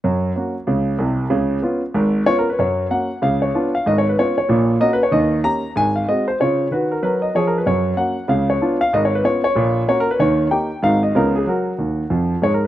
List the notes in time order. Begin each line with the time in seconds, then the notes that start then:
0.04 F#2 F#3
0.36 A#3 C#4 F#4
0.67 C#2 C#3
0.98 C2 C3
1.30 C#2 C#3
1.62 B3 C#4 F4
1.94 G#1 G#2
2.26 B3 C#4 F4 C#5
2.39 A#4
2.50 B4
2.59 F#2 F#3 C#5
2.90 A#3 C#4 F#4 F#5
3.22 C#2 C#3 F5
3.42 C#5
3.54 B3 D4 F4
3.75 F5
3.86 G#1 G#2 D#5
3.98 C#5
4.09 B4
4.19 B3 C#4 F4 C#5
4.38 C#5
4.49 A#1 A#2
4.80 A#3 C#4 F#4 D#5
4.93 B4
5.03 C#5
5.11 D#2 D#3 D#5
5.43 A#3 C#4 G4 A#5
5.76 G#1 G#2 G#5
5.96 F5
6.08 G#3 C4 F#4 D#5
6.28 C5
6.40 C#3 F4 C#5
6.71 D#3 F#4 B4
6.91 A#4
7.03 F#3 A#4 B4
7.22 D#5
7.35 F3 G#4 C#5
7.47 A#4
7.58 B4
7.66 F#2 F#3 C#5
7.97 A#3 C#4 F#4 F#5
8.28 C#2 C#3 F5
8.50 C#5
8.62 B3 D4 F4
8.81 F5
8.93 G#1 G#2 D#5
9.05 C#5
9.15 B4
9.24 B3 C#4 F4 C#5
9.44 C#5
9.56 A#1 A#2
9.88 A#3 C#4 F#4 C#5
10.00 A#4
10.11 B4
10.19 D#2 D#3 C#5
10.51 A#3 D#4 G4 G5
10.83 G#1 G#2 C4 D#4 F#4 F5
11.03 D#5
11.15 C#2 C#3 B3 D#4 F4 A#4
11.35 G#4
11.47 F#3 F#4 A#4
11.78 D#2 D#3
12.10 F2 F3
12.42 G#2 G#3 C#5
12.54 A#4